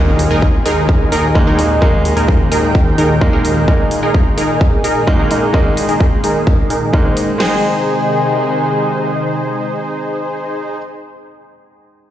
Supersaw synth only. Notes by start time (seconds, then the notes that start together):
Already playing: D#4 G#4 A#4
0.31 D#4 G#4 A#4
0.66 D#4 G#4 A#4
1.12 D#4 G#4 A#4
1.47 D#4 G#4 A#4
1.82 D#4 G#4 A#4
2.17 D#4 G#4 A#4
2.52 D#4 G#4 A#4
2.98 D#4 G#4 A#4
3.33 D#4 G#4 A#4
3.68 D#4 G#4 A#4
4.03 D#4 G#4 A#4
4.38 D#4 G#4 A#4
4.84 D#4 G#4 A#4
5.19 D#4 G#4 A#4
5.54 D#4 G#4 A#4
5.89 D#4 G#4 A#4
6.24 D#4 G#4 A#4
6.70 D#4 G#4 A#4
7.05 D#4 G#4 C5
7.40 D#4 G#4 C5